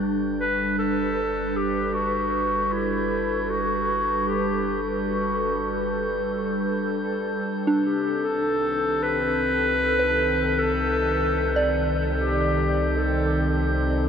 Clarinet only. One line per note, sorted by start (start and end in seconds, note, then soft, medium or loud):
0.41 0.77 B4 medium
0.79 1.58 A4 medium
1.56 1.95 G4 medium
1.93 2.74 F#4 medium
2.72 3.52 E4 medium
3.50 4.29 F#4 medium
4.27 4.81 G4 medium
5.08 5.83 F#4 medium
7.85 8.26 G4 medium
8.24 9.05 A4 medium
9.03 10.61 B4 loud
10.59 11.90 A4 loud
12.17 13.00 G4 medium
12.98 13.56 A4 medium